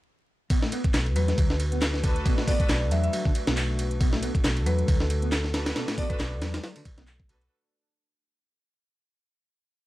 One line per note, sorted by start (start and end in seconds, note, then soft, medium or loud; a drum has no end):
0.50 0.61 B2 loud
0.50 7.47 A3 medium
0.50 7.47 D4 medium
0.50 7.47 F#4 medium
0.50 3.97 B4 medium
0.50 kick loud
0.50 closed hi-hat soft
0.50 ride medium
0.62 0.71 A2 medium
0.62 snare medium
0.72 0.80 B3 medium
0.72 closed hi-hat medium
0.72 ride medium
0.84 kick loud
0.84 closed hi-hat soft
0.94 1.16 B1 loud
0.94 snare loud
0.94 clap loud
0.94 closed hi-hat soft
0.94 ride medium
1.06 ride soft
1.16 1.32 E2 medium
1.16 1.37 F#3 loud
1.16 1.34 B4 loud
1.16 closed hi-hat medium
1.16 ride medium
1.28 snare soft
1.28 closed hi-hat soft
1.38 2.20 D2 medium
1.38 1.49 F#3 medium
1.38 kick loud
1.38 closed hi-hat soft
1.38 ride medium
1.50 1.54 D3 medium
1.50 snare soft
1.60 closed hi-hat medium
1.60 ride medium
1.72 1.78 B3 medium
1.72 closed hi-hat soft
1.81 snare loud
1.81 clap loud
1.81 closed hi-hat soft
1.81 ride medium
1.94 snare soft
2.04 2.45 D4 medium
2.04 2.45 F#4 medium
2.04 2.45 A4 medium
2.04 2.45 B4 medium
2.04 kick loud
2.04 closed hi-hat medium
2.04 ride medium
2.16 closed hi-hat soft
2.25 2.37 B2 loud
2.25 kick loud
2.25 closed hi-hat soft
2.25 ride medium
2.38 2.47 A2 medium
2.38 snare medium
2.47 2.56 B3 medium
2.47 2.58 D4 medium
2.47 2.58 F#4 medium
2.47 2.58 A4 medium
2.47 2.58 B4 loud
2.47 2.65 D5 medium
2.47 kick loud
2.47 closed hi-hat medium
2.47 open hi-hat medium
2.59 2.69 D4 loud
2.59 2.69 F#4 medium
2.59 2.69 A4 medium
2.59 2.69 B4 loud
2.59 muted fingered electric bass stroke soft
2.59 kick medium
2.59 closed hi-hat soft
2.69 2.91 B1 loud
2.69 snare loud
2.69 clap loud
2.69 closed hi-hat soft
2.69 ride medium
2.91 3.07 E2 medium
2.91 3.12 F#3 loud
2.91 2.99 E5 medium
2.91 closed hi-hat medium
2.91 ride medium
3.04 3.10 E5 medium
3.04 closed hi-hat soft
3.13 3.24 F#3 medium
3.13 closed hi-hat soft
3.13 ride medium
3.25 3.29 D3 medium
3.25 kick loud
3.35 closed hi-hat medium
3.35 ride medium
3.47 4.28 B1 medium
3.47 3.54 B3 medium
3.47 snare loud
3.47 closed hi-hat soft
3.57 clap loud
3.57 closed hi-hat soft
3.57 ride medium
3.79 closed hi-hat medium
3.79 ride medium
3.91 closed hi-hat soft
4.01 4.12 B2 loud
4.01 7.48 A4 medium
4.01 kick loud
4.01 closed hi-hat soft
4.01 ride medium
4.13 4.22 A2 medium
4.13 snare medium
4.23 4.31 B3 medium
4.23 closed hi-hat medium
4.23 ride medium
4.35 kick medium
4.35 closed hi-hat soft
4.44 4.67 B1 loud
4.44 snare loud
4.44 clap loud
4.44 closed hi-hat soft
4.44 ride medium
4.57 ride soft
4.66 4.82 E2 medium
4.66 4.87 F#3 loud
4.66 4.84 B4 medium
4.66 closed hi-hat medium
4.66 ride medium
4.79 closed hi-hat soft
4.88 5.71 D2 medium
4.88 4.99 F#3 medium
4.88 kick loud
4.88 closed hi-hat soft
4.88 ride medium
5.00 5.04 D3 medium
5.00 snare soft
5.10 closed hi-hat medium
5.10 ride medium
5.22 5.29 B3 medium
5.22 closed hi-hat soft
5.32 snare loud
5.32 clap loud
5.32 closed hi-hat soft
5.32 ride medium
5.44 snare soft
5.54 5.95 D4 medium
5.54 5.95 F#4 medium
5.54 5.95 A4 medium
5.54 5.95 B4 medium
5.54 snare loud
5.54 closed hi-hat medium
5.54 ride medium
5.66 snare loud
5.66 closed hi-hat soft
5.66 ride medium
5.76 5.87 B2 loud
5.76 snare loud
5.76 closed hi-hat soft
5.76 ride medium
5.88 5.97 A2 medium
5.88 snare loud
5.88 ride medium
5.98 6.06 B3 medium
5.98 6.08 D4 medium
5.98 6.08 F#4 medium
5.98 6.08 A4 medium
5.98 6.08 B4 loud
5.98 6.08 D5 medium
5.98 kick loud
5.98 closed hi-hat medium
5.98 open hi-hat medium
6.10 6.20 D4 loud
6.10 6.20 F#4 medium
6.10 6.20 A4 medium
6.10 6.41 B4 medium
6.10 6.20 B4 loud
6.10 muted fingered electric bass stroke soft
6.10 kick loud
6.10 closed hi-hat soft
6.20 6.42 B1 loud
6.20 snare loud
6.20 clap loud
6.20 closed hi-hat soft
6.20 ride medium
6.42 6.57 E2 medium
6.42 6.63 F#3 loud
6.42 snare loud
6.42 closed hi-hat medium
6.42 ride medium
6.54 snare loud
6.54 closed hi-hat soft
6.54 ride medium
6.63 6.75 F#3 medium
6.63 snare loud
6.63 closed hi-hat soft
6.63 ride medium
6.76 6.80 D3 medium
6.76 ride medium
6.85 kick loud
6.85 closed hi-hat medium
6.85 ride medium
6.98 7.46 B1 medium
6.98 7.04 B3 medium
6.98 snare medium
6.98 closed hi-hat soft
7.07 clap loud
7.07 closed hi-hat soft
7.07 ride medium
7.20 kick medium
7.29 7.50 D4 medium
7.29 7.50 F#4 medium
7.29 7.50 A4 medium
7.29 7.50 B4 medium
7.29 closed hi-hat medium
7.29 ride medium
7.41 closed hi-hat soft